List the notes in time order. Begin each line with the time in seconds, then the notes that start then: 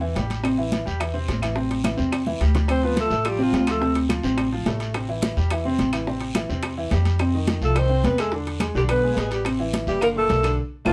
Already playing: E2
0.01 E3 E4, high conga
0.15 A1 G3 G4, high bongo, low bongo, high conga, high timbale, low timbale, short guiro
0.30 high bongo, high conga, high timbale, short guiro
0.43 C3 C4, high bongo, high conga, high timbale, long guiro, claves
0.58 E3 E4, high bongo, high conga
0.72 high bongo, high conga, high timbale, short guiro
0.86 E2 G3 G4, high bongo, high conga, short guiro
1.00 E3 E4, high bongo, high conga, high timbale, long guiro, claves
1.14 C3 C4, high conga
1.28 A1, high bongo, low bongo, high conga, high timbale, low timbale, short guiro
1.42 E3 E4, high bongo, high conga, high timbale, short guiro, claves
1.55 C3 C4, high bongo, high conga, long guiro
1.70 high bongo, high conga, high timbale
1.84 E3 E4, high bongo, high conga, high timbale, short guiro, claves
1.97 E2 C3 C4, high bongo, short guiro
2.12 high bongo, high conga, high timbale, long guiro, claves
2.27 E3 E4, high conga
2.40 D2 G3 G4, high bongo, low bongo, high timbale, short guiro
2.55 high bongo, low conga, high timbale, short guiro
2.68 C3 C4 C5, high bongo, high conga, high timbale, long guiro, claves
2.83 F3 B3 F4 B4, high bongo, high conga
2.97 A3 A4, high bongo, high conga, high timbale, short guiro
3.10 A1 A3 A4, high bongo, high conga, short guiro
3.25 F3 G3 F4, high bongo, high conga, high timbale, long guiro, claves
3.29 G4
3.39 C3 F3 C4, high conga
3.43 F4
3.53 D2, high bongo, low bongo, high conga, high timbale, low timbale, short guiro
3.67 F3 A3 F4 A4, high bongo, high conga, high timbale, short guiro, claves
3.81 C3 C4, high bongo, high conga, long guiro
3.95 high bongo, high conga, high timbale
4.09 F3 F4, high bongo, high conga, high timbale, short guiro, claves
4.23 A1 C3 C4, high bongo, short guiro
4.38 high bongo, high conga, high timbale, long guiro, claves
4.52 F3 F4, high conga
4.66 A1 A3 A4, high bongo, low bongo, high conga, high timbale, low timbale, short guiro
4.80 high bongo, high timbale, short guiro
4.94 C3 C4, high bongo, high conga, high timbale, long guiro, claves
5.09 E3 E4, high bongo, high conga
5.22 high bongo, high conga, high timbale, short guiro
5.37 E2 G3 G4, high bongo, high conga, short guiro
5.50 E3 E4, high bongo, high conga, high timbale, long guiro, claves
5.65 C3 C4, high conga
5.79 A1, high bongo, low bongo, high conga, high timbale, short guiro
5.93 E3 E4, high bongo, high conga, high timbale, short guiro, claves
6.07 C3 C4, high bongo, high conga, long guiro
6.21 high bongo, high conga, high timbale
6.35 E3 E4, high bongo, high conga, high timbale, short guiro, claves
6.49 E2 C3 C4, high bongo, short guiro
6.63 high bongo, high conga, high timbale, long guiro, claves
6.77 E3 E4, high conga
6.91 F2 G3 G4, high bongo, low bongo, high conga, high timbale, low timbale, short guiro
7.05 high bongo, high conga, high timbale, short guiro
7.19 C3 C4, high bongo, high conga, high timbale, long guiro, claves
7.34 D#3 D#4, high bongo, high conga
7.47 high bongo, high conga, high timbale, short guiro
7.61 C2 F3 A3 F4 A4, high bongo, high conga, short guiro
7.75 D#3 C4 D#4 C5, high bongo, high conga, high timbale, long guiro, claves
7.89 C3 C4, high conga
8.04 E2 B3 B4, high bongo, low bongo, high conga, high timbale, low timbale, short guiro
8.18 G#3 A3 G#4 A4, high bongo, high conga, high timbale, short guiro, claves
8.32 D3 D4, high bongo, high conga, long guiro
8.46 high bongo, high conga, high timbale
8.60 G#3 G#4, high bongo, high conga, high timbale, short guiro, claves
8.75 B1 D3 G3 D4 G4, high bongo, short guiro
8.89 B3 B4, high bongo, high conga, high timbale, long guiro, claves
9.03 G#3 G#4, high conga
9.17 A1 G#3 B3 G#4 B4, high bongo, low bongo, high conga, high timbale, low timbale, short guiro
9.31 G3 G4, high bongo, high timbale, short guiro
9.45 C3 C4, high bongo, high conga, high timbale, long guiro, claves
9.59 E3 E4, high bongo, high conga
9.73 high bongo, high conga, high timbale, short guiro
9.87 F#1 E3 G3 E4 G4, high bongo, high conga, short guiro
10.01 D3 A#3 D4 A#4, high bongo, high conga, high timbale, long guiro, claves
10.16 A#2 A3 A#3 A4, high conga
10.29 B1, high bongo, low bongo, high conga, high timbale, low timbale, short guiro
10.43 D3 D4, high bongo, high conga, high timbale, short guiro, claves
10.85 B1 F3 A3 B3 D4 F4, high bongo, high conga, high timbale, long guiro, claves